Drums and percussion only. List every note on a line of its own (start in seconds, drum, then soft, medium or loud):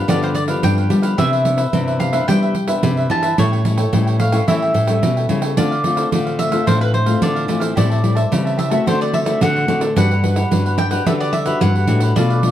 0.09 pandeiro medium
0.23 pandeiro soft
0.35 pandeiro medium
0.48 pandeiro medium
0.63 pandeiro medium
0.78 pandeiro soft
0.90 pandeiro medium
1.03 pandeiro medium
1.18 pandeiro medium
1.33 pandeiro soft
1.45 pandeiro medium
1.58 pandeiro medium
1.73 pandeiro medium
1.88 pandeiro soft
2.00 pandeiro medium
2.13 pandeiro medium
2.29 pandeiro medium
2.42 pandeiro soft
2.55 pandeiro medium
2.68 pandeiro medium
2.83 pandeiro medium
2.97 pandeiro soft
3.10 pandeiro medium
3.23 pandeiro medium
3.38 pandeiro medium
3.53 pandeiro soft
3.65 pandeiro medium
3.78 pandeiro medium
3.93 pandeiro medium
4.07 pandeiro soft
4.20 pandeiro medium
4.32 pandeiro medium
4.48 pandeiro medium
4.62 pandeiro soft
4.75 pandeiro medium
4.88 pandeiro medium
5.03 pandeiro medium
5.17 pandeiro soft
5.29 pandeiro medium
5.42 pandeiro medium
5.57 pandeiro medium
5.72 pandeiro soft
5.84 pandeiro medium
5.97 pandeiro medium
6.12 pandeiro medium
6.27 pandeiro soft
6.39 pandeiro medium
6.52 pandeiro medium
6.67 pandeiro medium
6.81 pandeiro soft
6.94 pandeiro medium
7.06 pandeiro medium
7.22 pandeiro medium
7.36 pandeiro soft
7.49 pandeiro medium
7.61 pandeiro medium
7.77 pandeiro medium
7.92 pandeiro soft
8.04 pandeiro medium
8.17 pandeiro medium
8.32 pandeiro medium
8.47 pandeiro soft
8.59 pandeiro medium
8.71 pandeiro medium
8.87 pandeiro medium
9.01 pandeiro soft
9.14 pandeiro medium
9.26 pandeiro medium
9.41 pandeiro medium
9.56 pandeiro soft
9.68 pandeiro medium
9.81 pandeiro medium
9.97 pandeiro medium
10.11 pandeiro soft
10.24 pandeiro medium
10.36 pandeiro medium
10.52 pandeiro medium
10.66 pandeiro soft
10.78 pandeiro medium
10.91 pandeiro medium
11.06 pandeiro medium
11.21 pandeiro soft
11.33 pandeiro medium
11.46 pandeiro medium
11.61 pandeiro medium
11.75 pandeiro soft
11.87 pandeiro medium
12.00 pandeiro medium
12.16 pandeiro medium
12.30 pandeiro soft
12.43 pandeiro medium